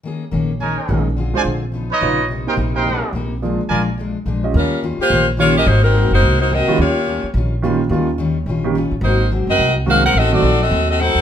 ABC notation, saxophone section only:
X:1
M:4/4
L:1/8
Q:"Swing" 1/4=214
K:Ebmix
V:1 name="Saxophone section"
z8 | z8 | z8 | z8 |
[G,DFB]2 z [B,FGc]2 z [B,FGd] [DGBe] | [B,E_Gc] [_G,CEB]2 [B,EGc]2 [B,EGc] [CGBe]2 | [B,FGd]4 z4 | z8 |
[B,E_Gc]2 z [CGBe]2 z [DGBf] [EBc_g] | [C^F=Ae] [CFA=d]2 [CFAe]2 [CFAe] [EAc^f]2 |]